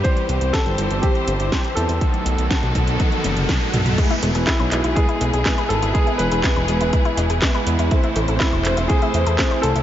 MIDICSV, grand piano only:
0, 0, Header, 1, 2, 480
1, 0, Start_track
1, 0, Tempo, 491803
1, 45, Time_signature, 4, 2, 24, 8
1, 9592, End_track
2, 0, Start_track
2, 0, Title_t, "Grand piano"
2, 0, Program_c, 0, 0
2, 36, Note_on_c, 0, 72, 108
2, 518, Note_on_c, 0, 69, 98
2, 535, Note_off_c, 0, 72, 0
2, 992, Note_on_c, 0, 67, 91
2, 1016, Note_off_c, 0, 69, 0
2, 1679, Note_off_c, 0, 67, 0
2, 1712, Note_on_c, 0, 69, 87
2, 3359, Note_off_c, 0, 69, 0
2, 4357, Note_on_c, 0, 64, 83
2, 4835, Note_on_c, 0, 68, 99
2, 4856, Note_off_c, 0, 64, 0
2, 5552, Note_on_c, 0, 69, 98
2, 5582, Note_off_c, 0, 68, 0
2, 5795, Note_on_c, 0, 68, 107
2, 5806, Note_off_c, 0, 69, 0
2, 6023, Note_off_c, 0, 68, 0
2, 6030, Note_on_c, 0, 71, 111
2, 7438, Note_off_c, 0, 71, 0
2, 8192, Note_on_c, 0, 64, 83
2, 8645, Note_off_c, 0, 64, 0
2, 8667, Note_on_c, 0, 68, 98
2, 9357, Note_off_c, 0, 68, 0
2, 9389, Note_on_c, 0, 69, 97
2, 9592, Note_off_c, 0, 69, 0
2, 9592, End_track
0, 0, End_of_file